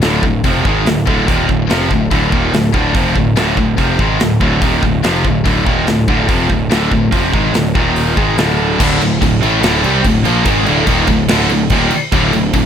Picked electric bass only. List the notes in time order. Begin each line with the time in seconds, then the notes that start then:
0.03 D1
0.23 D1
0.44 F1
0.65 G#1
0.88 D1
1.07 D1
1.29 D#1
1.49 D1
1.71 F1
1.91 D1
2.12 D1
2.33 D#1
2.54 D1
2.74 D1
2.95 F1
3.16 D1
3.37 D1
3.58 D1
3.78 F1
3.99 G#1
4.21 D1
4.41 D1
4.62 D#1
4.83 D1
5.05 F1
5.25 D1
5.46 D1
5.67 D#1
5.88 D1
6.08 D1
6.29 F1
6.50 D1
6.72 D1
6.92 D1
7.13 F1
7.34 G#1
7.54 D1
7.75 D#1
8.17 G#1
8.38 D1
8.80 D1
9.01 D1
9.22 D1
9.43 A1
9.63 D1
9.85 C2
10.05 D1
10.26 A#1
10.46 G#1
10.67 D1
10.87 D#1
11.08 D1
11.31 D1
11.51 D1
11.70 D#1
11.93 muted picked electric bass stroke
12.13 D1
12.34 D1
12.54 D1